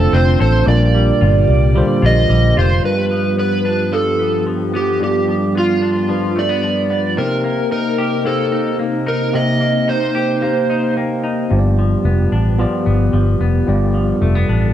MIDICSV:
0, 0, Header, 1, 6, 480
1, 0, Start_track
1, 0, Tempo, 541516
1, 602, Time_signature, 4, 2, 24, 8
1, 13060, End_track
2, 0, Start_track
2, 0, Title_t, "Electric slide guitar"
2, 0, Program_c, 0, 29
2, 0, Note_on_c, 0, 69, 86
2, 125, Note_on_c, 0, 72, 86
2, 142, Note_off_c, 0, 69, 0
2, 358, Note_off_c, 0, 72, 0
2, 368, Note_on_c, 0, 72, 80
2, 601, Note_off_c, 0, 72, 0
2, 604, Note_on_c, 0, 74, 66
2, 1826, Note_on_c, 0, 75, 92
2, 2007, Note_off_c, 0, 74, 0
2, 2261, Note_off_c, 0, 75, 0
2, 2293, Note_on_c, 0, 72, 81
2, 2526, Note_off_c, 0, 72, 0
2, 2529, Note_on_c, 0, 71, 63
2, 2998, Note_off_c, 0, 71, 0
2, 3008, Note_on_c, 0, 71, 81
2, 3485, Note_on_c, 0, 69, 61
2, 3499, Note_off_c, 0, 71, 0
2, 3929, Note_off_c, 0, 69, 0
2, 4223, Note_on_c, 0, 67, 66
2, 4454, Note_off_c, 0, 67, 0
2, 4465, Note_on_c, 0, 67, 55
2, 4943, Note_off_c, 0, 67, 0
2, 4946, Note_on_c, 0, 65, 83
2, 5662, Note_on_c, 0, 74, 87
2, 5675, Note_off_c, 0, 65, 0
2, 6367, Note_on_c, 0, 70, 69
2, 6393, Note_off_c, 0, 74, 0
2, 6834, Note_off_c, 0, 70, 0
2, 6844, Note_on_c, 0, 70, 88
2, 7323, Note_off_c, 0, 70, 0
2, 7326, Note_on_c, 0, 69, 59
2, 7771, Note_off_c, 0, 69, 0
2, 8052, Note_on_c, 0, 70, 78
2, 8290, Note_on_c, 0, 75, 76
2, 8294, Note_off_c, 0, 70, 0
2, 8767, Note_on_c, 0, 72, 82
2, 8780, Note_off_c, 0, 75, 0
2, 9690, Note_off_c, 0, 72, 0
2, 13060, End_track
3, 0, Start_track
3, 0, Title_t, "Tine electric piano"
3, 0, Program_c, 1, 4
3, 0, Control_c, 1, 64, 127
3, 0, Note_on_c, 1, 57, 77
3, 0, Note_on_c, 1, 62, 69
3, 0, Note_on_c, 1, 65, 80
3, 0, Note_on_c, 1, 72, 89
3, 423, Note_off_c, 1, 57, 0
3, 428, Note_off_c, 1, 62, 0
3, 430, Note_off_c, 1, 65, 0
3, 435, Note_off_c, 1, 72, 0
3, 589, Note_on_c, 1, 55, 72
3, 598, Note_on_c, 1, 62, 63
3, 603, Note_on_c, 1, 65, 67
3, 611, Note_on_c, 1, 70, 70
3, 613, Control_c, 1, 64, 0
3, 767, Control_c, 1, 64, 127
3, 1383, Note_off_c, 1, 55, 0
3, 1388, Note_off_c, 1, 62, 0
3, 1390, Note_off_c, 1, 65, 0
3, 1394, Note_off_c, 1, 70, 0
3, 1550, Note_on_c, 1, 55, 93
3, 1560, Note_on_c, 1, 50, 82
3, 1569, Note_on_c, 1, 65, 84
3, 1576, Note_on_c, 1, 72, 100
3, 2344, Note_off_c, 1, 55, 0
3, 2349, Note_off_c, 1, 50, 0
3, 2353, Note_off_c, 1, 65, 0
3, 2357, Note_off_c, 1, 72, 0
3, 2509, Note_on_c, 1, 55, 60
3, 2514, Note_on_c, 1, 62, 53
3, 2522, Note_on_c, 1, 65, 55
3, 2528, Note_on_c, 1, 70, 50
3, 2531, Control_c, 1, 64, 0
3, 2582, Note_off_c, 1, 70, 0
3, 2586, Note_on_c, 1, 71, 71
3, 2684, Control_c, 1, 64, 127
3, 3303, Note_off_c, 1, 55, 0
3, 3306, Note_off_c, 1, 62, 0
3, 3310, Note_off_c, 1, 65, 0
3, 3342, Note_off_c, 1, 71, 0
3, 3471, Note_on_c, 1, 55, 63
3, 3481, Note_on_c, 1, 62, 58
3, 3488, Note_on_c, 1, 65, 61
3, 3494, Note_on_c, 1, 69, 72
3, 4265, Note_off_c, 1, 55, 0
3, 4270, Note_off_c, 1, 62, 0
3, 4273, Note_off_c, 1, 65, 0
3, 4276, Note_off_c, 1, 69, 0
3, 4434, Note_on_c, 1, 55, 59
3, 4440, Note_on_c, 1, 62, 55
3, 4447, Note_on_c, 1, 65, 54
3, 4455, Note_on_c, 1, 74, 71
3, 5226, Note_off_c, 1, 55, 0
3, 5229, Note_off_c, 1, 62, 0
3, 5232, Note_off_c, 1, 65, 0
3, 5236, Note_off_c, 1, 74, 0
3, 5388, Note_on_c, 1, 55, 69
3, 5395, Note_on_c, 1, 62, 66
3, 5402, Note_on_c, 1, 65, 70
3, 5409, Note_on_c, 1, 71, 78
3, 6183, Note_off_c, 1, 55, 0
3, 6187, Note_off_c, 1, 62, 0
3, 6190, Note_off_c, 1, 65, 0
3, 6194, Note_off_c, 1, 71, 0
3, 6347, Note_on_c, 1, 58, 65
3, 6357, Note_on_c, 1, 63, 55
3, 6362, Note_on_c, 1, 67, 57
3, 6369, Note_on_c, 1, 72, 69
3, 6374, Control_c, 1, 64, 0
3, 6547, Control_c, 1, 64, 127
3, 7143, Note_off_c, 1, 58, 0
3, 7148, Note_off_c, 1, 63, 0
3, 7151, Note_off_c, 1, 67, 0
3, 7154, Note_off_c, 1, 72, 0
3, 7308, Note_on_c, 1, 58, 69
3, 7314, Note_on_c, 1, 63, 67
3, 7324, Note_on_c, 1, 67, 59
3, 7328, Note_on_c, 1, 72, 77
3, 8104, Note_off_c, 1, 58, 0
3, 8107, Note_off_c, 1, 63, 0
3, 8112, Note_off_c, 1, 67, 0
3, 8114, Note_off_c, 1, 72, 0
3, 8267, Note_on_c, 1, 58, 61
3, 8273, Note_on_c, 1, 63, 58
3, 8281, Note_on_c, 1, 67, 50
3, 8289, Note_on_c, 1, 72, 66
3, 9063, Note_off_c, 1, 58, 0
3, 9066, Note_off_c, 1, 63, 0
3, 9070, Note_off_c, 1, 67, 0
3, 9074, Note_off_c, 1, 72, 0
3, 9226, Note_on_c, 1, 58, 73
3, 9236, Note_on_c, 1, 63, 62
3, 9244, Note_on_c, 1, 67, 66
3, 9252, Note_on_c, 1, 72, 73
3, 9484, Note_on_c, 1, 75, 67
3, 9595, Note_off_c, 1, 75, 0
3, 9605, Note_on_c, 1, 77, 61
3, 9716, Note_off_c, 1, 77, 0
3, 9725, Note_on_c, 1, 79, 63
3, 9947, Note_off_c, 1, 79, 0
3, 9963, Note_on_c, 1, 82, 64
3, 10023, Note_off_c, 1, 58, 0
3, 10028, Note_off_c, 1, 63, 0
3, 10032, Note_off_c, 1, 67, 0
3, 10036, Note_off_c, 1, 72, 0
3, 10186, Note_off_c, 1, 82, 0
3, 10190, Note_on_c, 1, 59, 76
3, 10198, Note_on_c, 1, 65, 69
3, 10205, Note_on_c, 1, 67, 69
3, 10213, Note_on_c, 1, 72, 61
3, 10214, Control_c, 1, 64, 0
3, 10265, Note_off_c, 1, 72, 0
3, 10270, Note_on_c, 1, 74, 82
3, 10367, Control_c, 1, 64, 127
3, 10985, Note_off_c, 1, 59, 0
3, 10989, Note_off_c, 1, 65, 0
3, 10992, Note_off_c, 1, 67, 0
3, 11025, Note_off_c, 1, 74, 0
3, 11155, Note_on_c, 1, 59, 91
3, 11163, Note_on_c, 1, 65, 75
3, 11173, Note_on_c, 1, 67, 72
3, 11177, Note_on_c, 1, 74, 94
3, 11947, Note_off_c, 1, 59, 0
3, 11951, Note_off_c, 1, 65, 0
3, 11956, Note_off_c, 1, 67, 0
3, 11958, Note_off_c, 1, 74, 0
3, 12111, Note_on_c, 1, 59, 78
3, 12120, Note_on_c, 1, 65, 61
3, 12128, Note_on_c, 1, 67, 76
3, 12133, Note_on_c, 1, 74, 88
3, 12906, Note_off_c, 1, 59, 0
3, 12910, Note_off_c, 1, 65, 0
3, 12914, Note_off_c, 1, 67, 0
3, 12916, Note_off_c, 1, 74, 0
3, 13060, End_track
4, 0, Start_track
4, 0, Title_t, "Clean electric guitar"
4, 0, Program_c, 2, 27
4, 0, Note_on_c, 2, 53, 92
4, 0, Note_on_c, 2, 60, 72
4, 0, Note_on_c, 2, 62, 63
4, 0, Note_on_c, 2, 69, 61
4, 103, Note_off_c, 2, 60, 0
4, 114, Note_on_c, 2, 60, 63
4, 345, Note_off_c, 2, 69, 0
4, 356, Note_on_c, 2, 69, 60
4, 595, Note_on_c, 2, 46, 88
4, 646, Note_off_c, 2, 60, 0
4, 647, Note_off_c, 2, 69, 0
4, 834, Note_off_c, 2, 53, 0
4, 838, Note_on_c, 2, 55, 58
4, 1070, Note_off_c, 2, 62, 0
4, 1074, Note_on_c, 2, 65, 62
4, 1554, Note_off_c, 2, 55, 0
4, 1557, Note_on_c, 2, 55, 67
4, 1791, Note_off_c, 2, 65, 0
4, 1795, Note_on_c, 2, 65, 58
4, 2033, Note_off_c, 2, 55, 0
4, 2037, Note_on_c, 2, 55, 61
4, 2273, Note_off_c, 2, 65, 0
4, 2277, Note_on_c, 2, 65, 71
4, 2510, Note_off_c, 2, 46, 0
4, 2514, Note_on_c, 2, 43, 82
4, 2753, Note_off_c, 2, 55, 0
4, 2757, Note_on_c, 2, 53, 55
4, 2997, Note_on_c, 2, 59, 45
4, 3023, Note_off_c, 2, 65, 0
4, 3236, Note_on_c, 2, 62, 59
4, 3465, Note_off_c, 2, 53, 0
4, 3476, Note_on_c, 2, 53, 55
4, 3705, Note_off_c, 2, 59, 0
4, 3715, Note_on_c, 2, 59, 53
4, 3946, Note_off_c, 2, 53, 0
4, 3957, Note_on_c, 2, 53, 51
4, 4187, Note_off_c, 2, 59, 0
4, 4198, Note_on_c, 2, 59, 56
4, 4423, Note_off_c, 2, 43, 0
4, 4434, Note_on_c, 2, 43, 75
4, 4669, Note_off_c, 2, 53, 0
4, 4680, Note_on_c, 2, 53, 49
4, 4909, Note_off_c, 2, 59, 0
4, 4920, Note_on_c, 2, 59, 52
4, 5147, Note_off_c, 2, 62, 0
4, 5158, Note_on_c, 2, 62, 63
4, 5387, Note_off_c, 2, 53, 0
4, 5397, Note_on_c, 2, 53, 62
4, 5631, Note_off_c, 2, 59, 0
4, 5634, Note_on_c, 2, 57, 52
4, 5754, Note_off_c, 2, 57, 0
4, 5754, Note_on_c, 2, 59, 44
4, 5870, Note_off_c, 2, 53, 0
4, 5880, Note_on_c, 2, 53, 51
4, 6106, Note_off_c, 2, 59, 0
4, 6117, Note_on_c, 2, 59, 53
4, 6358, Note_off_c, 2, 43, 0
4, 6358, Note_on_c, 2, 48, 84
4, 6407, Note_off_c, 2, 59, 0
4, 6408, Note_off_c, 2, 62, 0
4, 6409, Note_off_c, 2, 53, 0
4, 6595, Note_on_c, 2, 58, 61
4, 6837, Note_on_c, 2, 63, 54
4, 7076, Note_on_c, 2, 67, 67
4, 7306, Note_off_c, 2, 58, 0
4, 7317, Note_on_c, 2, 58, 61
4, 7542, Note_off_c, 2, 63, 0
4, 7553, Note_on_c, 2, 63, 51
4, 7783, Note_off_c, 2, 58, 0
4, 7793, Note_on_c, 2, 58, 56
4, 8024, Note_off_c, 2, 63, 0
4, 8035, Note_on_c, 2, 63, 55
4, 8263, Note_off_c, 2, 48, 0
4, 8274, Note_on_c, 2, 48, 76
4, 8502, Note_off_c, 2, 58, 0
4, 8512, Note_on_c, 2, 58, 56
4, 8745, Note_off_c, 2, 63, 0
4, 8755, Note_on_c, 2, 63, 54
4, 8992, Note_off_c, 2, 67, 0
4, 8995, Note_on_c, 2, 67, 59
4, 9226, Note_off_c, 2, 58, 0
4, 9236, Note_on_c, 2, 58, 68
4, 9471, Note_off_c, 2, 63, 0
4, 9481, Note_on_c, 2, 63, 54
4, 9713, Note_off_c, 2, 58, 0
4, 9723, Note_on_c, 2, 58, 53
4, 9949, Note_off_c, 2, 63, 0
4, 9960, Note_on_c, 2, 63, 47
4, 10198, Note_off_c, 2, 48, 0
4, 10200, Note_on_c, 2, 43, 74
4, 10249, Note_off_c, 2, 63, 0
4, 10251, Note_off_c, 2, 58, 0
4, 10445, Note_on_c, 2, 53, 56
4, 10472, Note_off_c, 2, 67, 0
4, 10683, Note_on_c, 2, 59, 54
4, 10922, Note_on_c, 2, 62, 58
4, 11151, Note_off_c, 2, 53, 0
4, 11161, Note_on_c, 2, 53, 65
4, 11389, Note_off_c, 2, 59, 0
4, 11400, Note_on_c, 2, 59, 49
4, 11628, Note_off_c, 2, 53, 0
4, 11638, Note_on_c, 2, 53, 62
4, 11873, Note_off_c, 2, 59, 0
4, 11884, Note_on_c, 2, 59, 52
4, 12115, Note_off_c, 2, 43, 0
4, 12126, Note_on_c, 2, 43, 83
4, 12346, Note_off_c, 2, 53, 0
4, 12357, Note_on_c, 2, 53, 51
4, 12599, Note_off_c, 2, 59, 0
4, 12602, Note_on_c, 2, 57, 52
4, 12722, Note_off_c, 2, 57, 0
4, 12722, Note_on_c, 2, 59, 49
4, 12833, Note_off_c, 2, 62, 0
4, 12843, Note_on_c, 2, 62, 64
4, 13060, Note_off_c, 2, 43, 0
4, 13060, Note_off_c, 2, 53, 0
4, 13060, Note_off_c, 2, 59, 0
4, 13060, Note_off_c, 2, 62, 0
4, 13060, End_track
5, 0, Start_track
5, 0, Title_t, "String machine"
5, 0, Program_c, 3, 50
5, 0, Note_on_c, 3, 50, 76
5, 0, Note_on_c, 3, 60, 74
5, 0, Note_on_c, 3, 65, 94
5, 580, Note_off_c, 3, 50, 0
5, 582, Note_off_c, 3, 60, 0
5, 584, Note_off_c, 3, 65, 0
5, 599, Note_on_c, 3, 67, 85
5, 600, Note_on_c, 3, 50, 82
5, 604, Note_on_c, 3, 58, 75
5, 2500, Note_off_c, 3, 67, 0
5, 2501, Note_off_c, 3, 50, 0
5, 2502, Note_off_c, 3, 58, 0
5, 2512, Note_on_c, 3, 59, 72
5, 2514, Note_on_c, 3, 67, 81
5, 2518, Note_on_c, 3, 53, 83
5, 6322, Note_off_c, 3, 59, 0
5, 6322, Note_off_c, 3, 67, 0
5, 6324, Note_off_c, 3, 53, 0
5, 6363, Note_on_c, 3, 58, 67
5, 6363, Note_on_c, 3, 63, 86
5, 6369, Note_on_c, 3, 48, 76
5, 10168, Note_off_c, 3, 58, 0
5, 10168, Note_off_c, 3, 63, 0
5, 10171, Note_off_c, 3, 48, 0
5, 10204, Note_on_c, 3, 59, 65
5, 10206, Note_on_c, 3, 67, 89
5, 10210, Note_on_c, 3, 53, 74
5, 12105, Note_off_c, 3, 67, 0
5, 12126, Note_on_c, 3, 69, 94
5, 13060, Note_off_c, 3, 53, 0
5, 13060, Note_off_c, 3, 59, 0
5, 13060, Note_off_c, 3, 69, 0
5, 13060, End_track
6, 0, Start_track
6, 0, Title_t, "Fingered electric bass"
6, 0, Program_c, 4, 33
6, 114, Note_on_c, 4, 29, 98
6, 309, Note_off_c, 4, 29, 0
6, 360, Note_on_c, 4, 33, 75
6, 552, Note_off_c, 4, 33, 0
6, 596, Note_on_c, 4, 34, 110
6, 982, Note_off_c, 4, 34, 0
6, 1080, Note_on_c, 4, 31, 92
6, 1272, Note_off_c, 4, 31, 0
6, 1314, Note_on_c, 4, 36, 83
6, 1605, Note_off_c, 4, 36, 0
6, 1797, Note_on_c, 4, 34, 97
6, 1991, Note_off_c, 4, 34, 0
6, 2038, Note_on_c, 4, 34, 97
6, 2231, Note_off_c, 4, 34, 0
6, 2277, Note_on_c, 4, 29, 85
6, 2470, Note_off_c, 4, 29, 0
6, 10205, Note_on_c, 4, 31, 84
6, 10588, Note_off_c, 4, 31, 0
6, 10678, Note_on_c, 4, 29, 91
6, 10872, Note_off_c, 4, 29, 0
6, 10923, Note_on_c, 4, 33, 74
6, 11211, Note_off_c, 4, 33, 0
6, 11406, Note_on_c, 4, 31, 78
6, 11597, Note_off_c, 4, 31, 0
6, 11642, Note_on_c, 4, 31, 85
6, 11834, Note_off_c, 4, 31, 0
6, 11880, Note_on_c, 4, 29, 68
6, 12073, Note_off_c, 4, 29, 0
6, 12128, Note_on_c, 4, 31, 89
6, 12510, Note_off_c, 4, 31, 0
6, 12602, Note_on_c, 4, 29, 79
6, 12794, Note_off_c, 4, 29, 0
6, 12846, Note_on_c, 4, 33, 68
6, 13060, Note_off_c, 4, 33, 0
6, 13060, End_track
0, 0, End_of_file